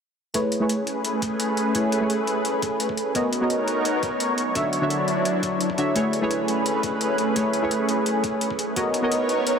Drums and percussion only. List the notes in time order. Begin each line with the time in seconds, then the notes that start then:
0.34 kick, closed hi-hat
0.52 closed hi-hat
0.69 closed hi-hat
0.87 closed hi-hat
1.05 closed hi-hat
1.22 kick, closed hi-hat
1.40 closed hi-hat
1.57 closed hi-hat
1.75 kick, closed hi-hat
1.92 closed hi-hat
2.10 closed hi-hat
2.27 closed hi-hat
2.45 closed hi-hat
2.62 kick, closed hi-hat
2.80 closed hi-hat
2.89 kick
2.97 closed hi-hat
3.15 kick, closed hi-hat
3.33 closed hi-hat
3.50 closed hi-hat
3.68 closed hi-hat
3.85 closed hi-hat
4.03 kick, closed hi-hat
4.20 closed hi-hat
4.38 closed hi-hat
4.55 kick, closed hi-hat
4.73 closed hi-hat
4.90 closed hi-hat
5.08 closed hi-hat
5.25 closed hi-hat
5.43 kick, closed hi-hat
5.61 closed hi-hat
5.70 kick
5.78 closed hi-hat
5.96 kick, closed hi-hat
6.13 closed hi-hat
6.31 closed hi-hat
6.48 closed hi-hat
6.66 closed hi-hat
6.83 kick, closed hi-hat
7.01 closed hi-hat
7.18 closed hi-hat
7.36 kick, closed hi-hat
7.53 closed hi-hat
7.71 closed hi-hat
7.89 closed hi-hat
8.06 closed hi-hat
8.24 kick, closed hi-hat
8.41 closed hi-hat
8.51 kick
8.59 closed hi-hat
8.76 kick, closed hi-hat
8.94 closed hi-hat
9.12 closed hi-hat
9.29 closed hi-hat
9.47 closed hi-hat